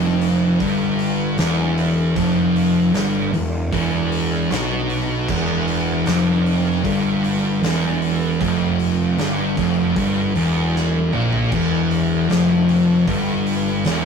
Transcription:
Already playing: F1 F2
0.21 open hi-hat
0.60 G1 G2, kick, open hi-hat
0.99 open hi-hat
1.38 E1 E2, snare, open hi-hat
1.78 open hi-hat
2.16 F1 F2, kick, open hi-hat
2.56 open hi-hat
2.94 G1 G2, snare, open hi-hat
3.32 E1 E2, open hi-hat
3.73 E1 E2, kick, open hi-hat
4.12 open hi-hat
4.50 B1 B2, snare, open hi-hat
4.90 open hi-hat
5.28 E1 E2, kick, crash
5.68 open hi-hat
6.06 F1 F2, snare, open hi-hat
6.46 open hi-hat
6.85 G1 G2, kick, open hi-hat
7.24 open hi-hat
7.62 E1 E2, snare, open hi-hat
8.02 open hi-hat
8.40 F1 F2, kick, open hi-hat
8.79 open hi-hat
9.18 G1 G2, snare, open hi-hat
9.57 F1 F2, kick, open hi-hat
9.96 G1 G2, kick, open hi-hat
10.35 E1 E2, open hi-hat
10.76 snare
11.12 A#1 A#2, mid tom
11.33 floor tom
11.51 E1 E2, kick, crash
11.91 open hi-hat
12.29 F1 F2, snare, open hi-hat
12.69 open hi-hat
13.07 G1 G2, kick, open hi-hat
13.46 open hi-hat
13.85 E1 E2, snare, open hi-hat

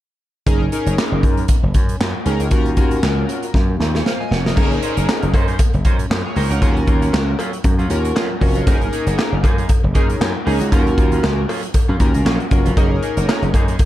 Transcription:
0.46 F#1 C#4 D#4 G#4 A#4, kick, closed hi-hat
0.72 C#4 D#4 G#4 A#4, closed hi-hat
0.86 F#1, closed hi-hat
0.98 snare, clap
1.12 F#1
1.23 F#2, kick, closed hi-hat
1.37 closed hi-hat
1.48 kick, closed hi-hat
1.63 F#1
1.74 F#2, kick, closed hi-hat
1.89 closed hi-hat
2.01 F#2, snare, clap
2.25 C#2 C#4 D#4 G#4 A#4, closed hi-hat
2.40 C#2, closed hi-hat
2.51 D#2 C#4 F4 F#4 A#4, kick, closed hi-hat
2.66 closed hi-hat
2.77 D#2 C#4 F4 F#4 A#4, kick, closed hi-hat
2.91 closed hi-hat
3.03 C#2, snare, clap
3.29 closed hi-hat
3.43 closed hi-hat
3.54 F#2, kick, snare
3.80 D#2, snare
3.95 G#4 C#5, snare
4.05 C5 F5, snare
4.20 D#5 G#5
4.31 F1 C#5 F#5, snare
4.45 A#4 D#5, snare
4.56 F#1 C#4 D#4 G#4 A#4, kick, crash, cowbell
4.71 muted clean electric guitar stroke, closed hi-hat
4.82 C#4 D#4 C5, closed hi-hat
4.97 F#1 C#4 D#4 A#4, closed hi-hat
5.09 snare, clap, cowbell
5.22 F#1, muted clean electric guitar stroke, closed hi-hat
5.34 F#2 C#4 D#4 C5, kick, closed hi-hat, cowbell
5.48 C#4 D#4 C5, closed hi-hat
5.59 kick, closed hi-hat, cowbell
5.74 F#1, muted clean electric guitar stroke, closed hi-hat
5.85 F#2 C#4 D#4 C5, kick, closed hi-hat
5.99 muted clean electric guitar stroke, closed hi-hat
6.10 F#2, muted clean electric guitar stroke, snare, clap, cowbell
6.25 G#4 C#5, muted clean electric guitar stroke
6.36 C#2 C#4 D#4 A#4 C5 D#5, open hi-hat
6.50 C#2 C#4 D#4 A#4 C#5 F#5, closed hi-hat
6.61 D#2 F#3 C#4 F4 F#4 A#4, kick, closed hi-hat, cowbell
6.76 muted clean electric guitar stroke, closed hi-hat
6.87 D#2 F#3 C#4 F4, kick, closed hi-hat
7.01 F#3 C#4 F4, closed hi-hat
7.13 C#2, snare, clap, cowbell
7.27 muted clean electric guitar stroke
7.39 F#3 C#4 F4, closed hi-hat, cowbell
7.53 muted clean electric guitar stroke, closed hi-hat
7.64 F#2, muted clean electric guitar stroke, kick, closed hi-hat, cowbell
7.79 F#3 C#4 F4, closed hi-hat
7.90 D#2 C#4 F4 F#4 A#4, muted clean electric guitar stroke, closed hi-hat
8.04 muted clean electric guitar stroke, closed hi-hat
8.15 F#3 C#4 F4, snare, clap, cowbell
8.30 muted clean electric guitar stroke
8.41 F1 C#4 F4 F#4 A#4, muted clean electric guitar stroke, kick, open hi-hat
8.55 F#3 C#4 F4, closed hi-hat
8.67 F#1 A#3 C#4 D#4 F#4 G#4 A#4, kick, closed hi-hat, cowbell
8.81 muted clean electric guitar stroke, closed hi-hat
8.92 A#3 D#4 G#4, closed hi-hat
9.06 F#1 A#3 D#4 F#4, closed hi-hat
9.18 muted clean electric guitar stroke, snare, clap, cowbell
9.32 F#1, muted clean electric guitar stroke
9.43 F#2 A#3 D#4 G#4, kick, closed hi-hat, cowbell
9.58 A#3 D#4 G#4, closed hi-hat
9.69 kick, closed hi-hat, cowbell
9.83 F#1, muted clean electric guitar stroke
9.94 F#2 A#3 C#4 D#4 G#4 A#4, kick, closed hi-hat
10.09 muted clean electric guitar stroke, closed hi-hat
10.20 F#2, muted clean electric guitar stroke, snare, clap, cowbell
10.34 muted clean electric guitar stroke
10.45 C#2 A#3 C#4 D#4 G#4 A#4, open hi-hat
10.60 C#2 A#3 D#4 F#4, closed hi-hat
10.71 D#2 F#3 C#4 F4 F#4 A#4, kick, closed hi-hat, cowbell
10.86 muted clean electric guitar stroke, closed hi-hat
10.97 D#2 F#3 C#4 F4, kick, closed hi-hat
11.11 F#3 C#4 F4, closed hi-hat
11.23 C#2, snare, clap, cowbell
11.37 muted clean electric guitar stroke
11.48 F#3 C#4 F4, open hi-hat, cowbell
11.63 muted clean electric guitar stroke, closed hi-hat
11.74 muted clean electric guitar stroke, kick, closed hi-hat, cowbell
11.88 F#2 F#3 C#4 F4
12.00 D#2 C#4 F4 F#4 A#4, muted clean electric guitar stroke, kick, closed hi-hat
12.14 C#2, muted clean electric guitar stroke, closed hi-hat
12.25 A#1 F#3 C#4 F4, snare, clap, cowbell
12.40 muted clean electric guitar stroke, closed hi-hat
12.51 F#1 C#4 F4 F#4 A#4, muted clean electric guitar stroke, kick, closed hi-hat
12.65 F1 F#3 C#4 F4, closed hi-hat
12.77 F#1 A#3 C#4 D#4 F#4 G#4 A#4, kick, closed hi-hat, cowbell
12.91 muted clean electric guitar stroke
13.02 A#3 D#4 G#4, closed hi-hat
13.17 F#1 A#3 D#4 F#4, closed hi-hat
13.28 muted clean electric guitar stroke, snare, clap, cowbell
13.42 F#1, muted clean electric guitar stroke, closed hi-hat
13.54 F#2 A#3 D#4 G#4, kick, closed hi-hat, cowbell
13.68 A#3 D#4 G#4, closed hi-hat
13.79 kick, closed hi-hat, cowbell

